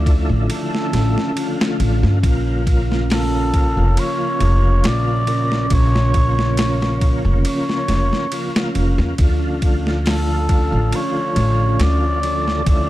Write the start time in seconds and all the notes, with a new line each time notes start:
Already playing: D2 D3 F3 A3 C#4 E4 D5
0.06 kick, ride
0.29 A1
0.50 A4, ride
0.75 snare
0.93 A1, snare, ride
1.18 snare
1.36 D3 F3 A3 F4, ride
1.61 snare
1.80 A1, ride
2.03 G2, snare
2.21 A#1 C#3 F3 A#3 F4, kick, ride
2.67 kick, ride
2.92 snare
3.10 A4, snare, open hi-hat
3.54 kick, ride
3.77 F1
3.97 C#5, ride
4.40 F1, ride
4.84 A#1 D5, snare, ride
5.26 C#3 F3 A#3 A#4, ride
5.52 snare
5.68 A#1 C#3 F3 A#3 C#4, kick, ride
5.73 C#5
5.96 snare
6.14 kick, ride
6.39 snare
6.57 snare, ride
6.82 snare
7.01 kick, ride
7.25 F1
7.45 C#5, ride
7.69 snare
7.88 F1, snare, ride
8.13 snare
8.32 C#3 F3 A#3 F4, ride
8.56 snare
8.75 F1, ride
8.98 E2, snare
9.17 D2 D3 F3 A3 C#4, kick, ride
9.21 F4
9.62 kick, ride
9.87 snare
10.06 A4, snare, open hi-hat
10.49 kick, ride
10.72 A1
10.93 C#5, ride
11.36 A1, ride
11.79 D2 D5, snare, ride
12.23 D3 F3 A3 A4, ride
12.48 snare
12.65 D2 D3 F3 A3 E4 D5, kick, ride